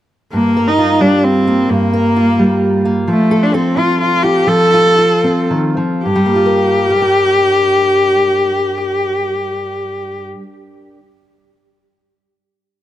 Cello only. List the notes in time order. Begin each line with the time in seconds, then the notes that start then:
0.33 A#3
0.67 D#4
1.01 D4
1.24 C4
1.70 A#3
3.09 A3
3.43 D4
3.54 C4
3.78 F4
4.01 F4
4.23 G4
4.48 A4
6.04 G4